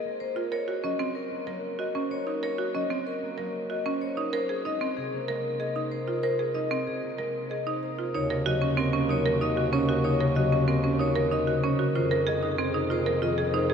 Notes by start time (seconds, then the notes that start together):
Already playing: G#3 A#3
0.05 C4
0.20 A#3 C5
0.36 F4
0.52 A#4 C#5
0.68 F#4
0.84 F#3 C#4 D#5
0.99 C4
1.15 A#4
1.31 A#3
1.47 F#3 A#4
1.79 F#4 D#5
1.95 C4 C#4
2.10 A#3 C#5
2.27 D#4
2.43 A#4 C#5
2.58 F#4
2.75 F#3 C#4 D#5
2.90 C4
3.07 A#4
3.22 A#3
3.38 F#3 A#4
3.70 F#4 D#5
3.86 C4 C#4
4.01 A#3 C#5
4.17 D#4
4.33 A#4 C5
4.49 G#4
4.65 G#3 D#4 D#5
4.81 C4
4.97 C3 G#4
5.13 A#3
5.28 G#3 A#4
5.60 G#4 D#5
5.76 C4 D#4
5.92 A#3 C5
6.08 F4
6.23 A#4 C5
6.39 G#4
6.54 G#3 D#4 D#5
6.71 C4
6.87 C3 G#4
7.03 A#3
7.18 G#3 A#4
7.50 G#4 D#5
7.67 C4 D#4
7.82 A#3 C5
7.99 F4
8.14 D#2 C#3 D#4 F#4 C#5
8.30 C3 A#4
8.46 F#3 F#4 D#5
8.62 C4 C#4
8.77 C3 C4 A#4
8.93 A#3 C#4
9.09 F#3 D#4 C#5
9.26 D#3 A#4
9.41 C#3 D#4 D#5
9.57 C4 F#4
9.73 A#3 C#4 C#5
9.89 F#4
10.04 C#3 D#4 C#5
10.21 C3 A#4
10.35 F#3 F#4 D#5
10.52 C4 C#4
10.68 C3 C4 A#4
10.84 A#3 C#4
10.99 F#3 D#4 C#5
11.16 D#3 A#4
11.31 C#3 D#4 D#5
11.47 C4 F#4
11.64 A#3 C#4 C#5
11.79 F#4
11.95 F2 D#3 F4 G#4 C5
12.11 C3 A#4
12.27 G#3 G#4 D#5
12.43 C4 D#4
12.58 C3 C4 G#4
12.74 A#3 D#4
12.90 G#3 F4 C5
13.06 F3 A#4
13.22 D#3 F4 D#5
13.38 C4 G#4
13.54 A#3 D#4 C5
13.70 G#4